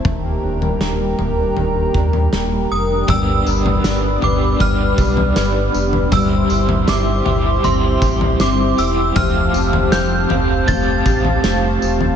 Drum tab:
TB |----------------|x-x-x---x-x-x-x-|x-x-x---x-x-x-x-|x-x-x---x-x-x-x-|
SD |----o-------o---|----o-------o---|----o-------o---|----o-------o---|
FT |o--o--o-o--o----|o--o--o-o--o---o|o--o--o-o--o----|o--o--o-o--o---o|
BD |o---------o-----|o-------o-o-----|o---------o-----|o-------o-o-----|